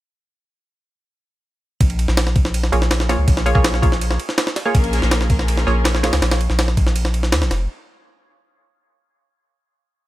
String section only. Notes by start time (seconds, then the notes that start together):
4.74 A#3 C#4 F4 G#4 A#4
5.29 A#3 C#4 F4 G#4 A#4